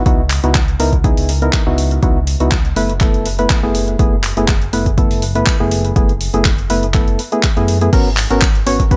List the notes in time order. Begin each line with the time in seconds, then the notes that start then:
0.06 C#2 B3 D#4 E4 F#4, kick, closed hi-hat
0.30 clap, open hi-hat
0.43 C#2 B3 D#4 E4 F#4, closed hi-hat
0.55 kick, clap, closed hi-hat
0.68 closed hi-hat
0.79 C#2 B3 D#4 E4 A#4, open hi-hat
0.93 kick, closed hi-hat
1.04 B3 D#4 E4 G#4, kick, closed hi-hat
1.17 C#2, open hi-hat
1.29 open hi-hat
1.42 B3 D#4 E4 A#4, closed hi-hat
1.53 kick, clap, closed hi-hat
1.66 C#2 B3 D#4 E4 F#4
1.78 open hi-hat
1.91 closed hi-hat
2.02 C#2 B3 D#4 E4 F#4, kick, closed hi-hat
2.27 open hi-hat
2.40 C#2 B3 D#4 E4 F#4, closed hi-hat
2.51 kick, clap, closed hi-hat
2.65 closed hi-hat
2.76 F#1 A3 B3 E4 B4, open hi-hat
2.89 closed hi-hat
3.00 A3 B3 E4 A4, kick, clap, closed hi-hat
3.14 F#1, closed hi-hat
3.26 open hi-hat
3.38 A3 B3 E4 B4, closed hi-hat
3.50 kick, clap, closed hi-hat
3.63 F#1 A3 B3 E4 G#4
3.75 open hi-hat
3.88 closed hi-hat
3.99 F#1 A3 B3 E4 G#4, kick, closed hi-hat
4.23 clap, open hi-hat
4.37 F#1 A3 B3 E4 G#4, closed hi-hat
4.48 kick, clap, closed hi-hat
4.62 closed hi-hat
4.73 F#1 A3 B3 E4 B4, open hi-hat
4.86 kick, closed hi-hat
4.97 A3 B3 E4 A4, kick, closed hi-hat
5.11 F#1, open hi-hat
5.22 open hi-hat
5.35 A3 B3 E4 B4, closed hi-hat
5.46 kick, clap, closed hi-hat
5.60 F#1 A3 B3 E4 G#4
5.71 open hi-hat
5.85 closed hi-hat
5.96 F#1 A3 B3 E4 G#4, kick, closed hi-hat
6.09 closed hi-hat
6.21 open hi-hat
6.34 F#1 A3 B3 E4 G#4, closed hi-hat
6.45 kick, clap, closed hi-hat
6.58 closed hi-hat
6.70 F#1 A3 B3 E4 B4, open hi-hat
6.83 closed hi-hat
6.94 A3 B3 E4 A4, kick, clap, closed hi-hat
7.08 F#1, closed hi-hat
7.19 open hi-hat
7.32 A3 B3 E4 G#4, closed hi-hat
7.43 kick, clap, closed hi-hat
7.57 F#2 A3 B3 E4 G#4, closed hi-hat
7.68 open hi-hat
7.81 A3 B3 E4 G#4, closed hi-hat
7.93 G#1 B3 C#4 F#4 A#4, kick, closed hi-hat, crash
8.17 clap, open hi-hat
8.30 G#1 B3 C#4 F#4 A#4, closed hi-hat
8.41 kick, clap, closed hi-hat
8.55 closed hi-hat
8.66 G#1 B3 C#4 F#4 C#5, open hi-hat
8.80 kick, closed hi-hat
8.91 B3 C#4 F#4 B4, kick, closed hi-hat